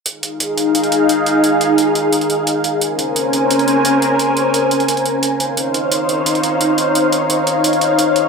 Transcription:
<<
  \new Staff \with { instrumentName = "Analog synth pad" } { \time 4/4 \key f \minor \tempo 4 = 174 << { <aes' f''>1~ | <aes' f''>1 | <des' c'' aes''>1~ | <des' c'' aes''>2.~ <des' c'' aes''>8 <ees' des'' f''>8~ |
<ees' des'' f''>1~ | <ees' des'' f''>1 | } \\ { ees'1~ | ees'1 | bes'1~ | bes'2.~ bes'8 c''8~ |
c''1~ | c''2.~ c''8 aes'8 | } >> }
  \new DrumStaff \with { instrumentName = "Drums" } \drummode { \time 4/4 hh8 hh8 hh8 hh8 hh16 hh16 hh8 hh8 hh8 | hh8 hh8 hh8 hh8 hh16 hh16 hh8 hh8 hh8 | hh8 hh8 hh8 hh8 hh16 hh16 hh8 hh8 hh8 | hh8 hh8 hh8 hh16 hh16 hh16 hh16 hh8 hh8 hh8 |
hh8 hh8 hh8 hh8 hh16 hh16 hh8 hh8 hh8 | hh8 hh8 hh8 hh8 hh16 hh16 hh8 hh8 hh8 | }
>>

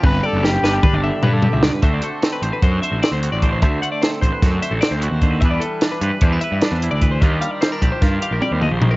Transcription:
<<
  \new Staff \with { instrumentName = "Clean electric guitar" } { \time 9/8 \key d \mixolydian \tempo 4. = 100 b'8 d''8 g'8 b'16 g'16 b'16 d''16 e''8 b'16 a'8 e''16 d''16 b'16 | e''16 d''16 a'8 r16 b'16 c''16 b'16 c''8 e''8 d''16 c''8 d''8 c''16 | e''8 fis''16 d''16 c''16 a'16 c''16 b'16 a'8 e''16 a'16 d''16 c''16 e''16 c''8 b'16 | e''16 d''16 a'8 r16 b'16 c''16 b'16 c''8 e''8 d''16 c''8 d''8 c''16 |
ees''8 f''16 d''16 c''16 bes'16 d''16 c''16 bes'8 f''16 bes'16 d''16 c''16 ees''16 c''8 bes'16 | }
  \new Staff \with { instrumentName = "Trumpet" } { \time 9/8 \key d \mixolydian b'8 a'8 g'2 r4. | r1 r8 | r1 r8 | r1 r8 |
r1 r8 | }
  \new Staff \with { instrumentName = "Clean electric guitar" } { \time 9/8 \key d \mixolydian << { r8 g'4 d'8 d'4 d'8 g'4 | <a c' fis' c''>4 c'8 c''8 fis'8 c''8 c'8 fis'8 c''8 | c''4 c'8 c''8 fis'8 c''8 c'8 fis'8 c''8 | <g d' e' b'>4 d'8 b'8 d'16 e'16 b'8 d'8 e'8 b'8 |
<g d' f' g'>4 c'16 d'16 g'8 f'8 g'2 | } \\ { g,4 g4. d4. g,8 | d8 a2.~ a8 d8 | d8 a2.~ a8 d8 | e8 g2.~ g8 e8 |
ees8 g2~ g8 g8 f8 ees8 | } >> }
  \new Staff \with { instrumentName = "Picked electric bass" } { \clef bass \time 9/8 \key d \mixolydian g,,8 r16 fis,,8. g,,8 r16 g,,8 r16 g,8. cis,8 r16 | d,8 r4 a,,16 r16 fis,8 r16 a,,16 r16 d,8 a,,8. | d,8 r4 a,,16 r16 fis,8 r16 a,,16 r16 d,8 ees,8. | e,8 r4 g,16 r16 e,8 r16 g,16 r16 e,8 d,8. |
ees,8 r4 bes,,16 r16 g,8 r16 bes,,16 r16 ees,8 bes,,8. | }
  \new DrumStaff \with { instrumentName = "Drums" } \drummode { \time 9/8 <bd tommh>4 sn8 sn8 <bd toml>4 tomfh8 tomfh8 sn8 | <hh bd>8 hh8 <hh sn>8 hh8 <hh bd>8 hh8 <hh sn>8 hh8 <hh bd>8 | <hh bd>8 hh8 <hh sn>8 <hh bd>8 <hh bd sn>8 hh8 <hh sn>8 hh8 <hh bd>8 | <hh bd>8 hh8 <hh sn>8 hh8 <hh bd>8 hh8 <hh sn>8 hh8 <hh bd>8 |
<hh bd>8 hh8 <hh sn>8 <hh bd>8 <hh bd sn>8 hh8 tommh8 toml8 tomfh8 | }
>>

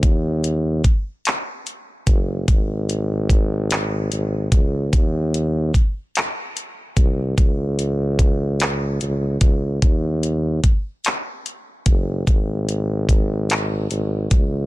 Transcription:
<<
  \new Staff \with { instrumentName = "Tuba" } { \clef bass \time 6/8 \key ees \dorian \tempo 4. = 49 ees,4 ges,,8 r4 ges,,8 | aes,,2 aes,,8 des,8 | ees,4 c,8 r4 c,8 | des,2 des,8 des,8 |
ees,4 ges,,8 r4 ges,,8 | aes,,2 aes,,8 des,8 | }
  \new DrumStaff \with { instrumentName = "Drums" } \drummode { \time 6/8 <hh bd>8 hh8 <hh bd>8 <hc hh>8 hh8 <hh bd>8 | <hh bd>8 hh8 <hh bd>8 <hc hh>8 hh8 <hh bd>8 | <hh bd>8 hh8 <hh bd>8 <hc hh>8 hh8 <hh bd>8 | <hh bd>8 hh8 <hh bd>8 <hc hh>8 hh8 <hh bd>8 |
<hh bd>8 hh8 <hh bd>8 <hc hh>8 hh8 <hh bd>8 | <hh bd>8 hh8 <hh bd>8 <hc hh>8 hh8 <hh bd>8 | }
>>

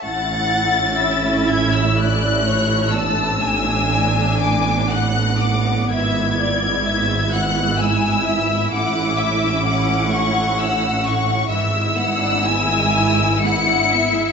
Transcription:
<<
  \new Staff \with { instrumentName = "Violin section" } { \time 3/4 \key a \major \tempo 4 = 63 a'''4. gis'''16 e'''16 fis'''4 | e'''4. d'''8 fis'''8 d'''8 | gis'''4. fis'''8 e'''4 | d'''4. cis'''8 e'''8 cis'''8 |
e'''2 cis''''4 | }
  \new Staff \with { instrumentName = "Violin section" } { \time 3/4 \key a \major fis''4 e''4 d''8 cis''8 | a''8 gis''4. fis''4 | e''8 d''8 e''8 fis''8 gis''8 e''8 | fis''8 e''8 fis''2 |
e''8 fis''8 gis''4 fis''8 e''8 | }
  \new Staff \with { instrumentName = "Viola section" } { \time 3/4 \key a \major << { e'2. | d'2. | e'2.~ | e'2. |
e'2. | } \\ { cis'2. | b2.~ | b2. | cis'2. |
e16 gis16 b16 d'16 b16 gis16 e16 gis16 b16 d'16 b16 gis16 | } >> }
  \new Staff \with { instrumentName = "Cello section" } { \clef bass \time 3/4 \key a \major a,2.~ | a,2. | gis,2. | a,2. |
gis,2. | }
  \new Staff \with { instrumentName = "Double bass section" } { \clef bass \time 3/4 \key a \major a,,2.~ | a,,2. | gis,,2. | a,,2. |
gis,,2. | }
>>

